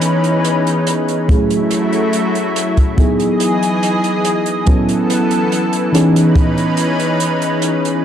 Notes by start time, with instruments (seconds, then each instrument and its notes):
Already playing: fm electric piano E3 B3 C#4 D#4 G#4, analog synth pad E3 C#4 D#4 B4
0.01 closed hi-hat
0.24 closed hi-hat
0.44 closed hi-hat
0.67 closed hi-hat
0.87 closed hi-hat
1.08 closed hi-hat
1.28 fm electric piano F#3 A3 C#4 E4 G#4, analog synth pad F#3 A3 E4, kick, closed hi-hat
1.50 closed hi-hat
1.71 closed hi-hat
1.93 closed hi-hat
2.13 closed hi-hat
2.35 closed hi-hat
2.56 closed hi-hat
2.77 kick, closed hi-hat
2.97 analog synth pad E3 G#4 D#5, fm electric piano F#3 B3 D#4 E4 G#4, kick, closed hi-hat
3.20 closed hi-hat
3.40 closed hi-hat
3.63 closed hi-hat
3.83 closed hi-hat
4.04 closed hi-hat
4.25 closed hi-hat
4.46 closed hi-hat
4.66 analog synth pad E3 B3 A4, fm electric piano F#3 B3 C#4 E4 A4, kick, closed hi-hat
4.89 closed hi-hat
5.10 closed hi-hat
5.31 closed hi-hat
5.52 closed hi-hat
5.73 closed hi-hat
5.92 fm electric piano E3 B3 C#4 D#4 G#4, analog synth pad C#4 D#4 B4, closed hi-hat
6.16 closed hi-hat
6.35 kick, closed hi-hat
6.58 closed hi-hat
6.77 closed hi-hat
7.00 closed hi-hat
7.20 closed hi-hat
7.42 closed hi-hat
7.62 closed hi-hat
7.85 closed hi-hat